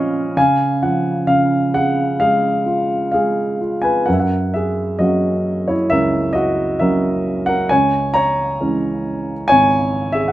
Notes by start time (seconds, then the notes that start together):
Already playing: F3 C#4 C#5 D#5 F5 F#5
0.37 C#3 F5 G#5
0.82 F3 F#5
1.27 C#3 F5
1.74 G#4 F#5
2.19 G#3 G#4 F5
2.66 F4
3.12 G#3 G#4 F5
3.61 F4
3.82 B4 G#5
4.06 F#2 A#4 F#5
4.13 E5
4.20 A#4 F#5
4.54 G#4 E5
4.99 F#3 A#3 C#4 F#4 D#5
5.68 E4 C#5
5.90 C#2 A#4 E5
6.33 F#4 D#5
6.79 F#3 A#3 C#4 A#4 E5
7.46 A#4 F#5
7.69 C#2 C#5 G#5
8.14 C#5 A#5
8.60 E3 G#3 C#4
9.48 G#1 C#5 G#5
10.12 G#4 E5
10.28 F#5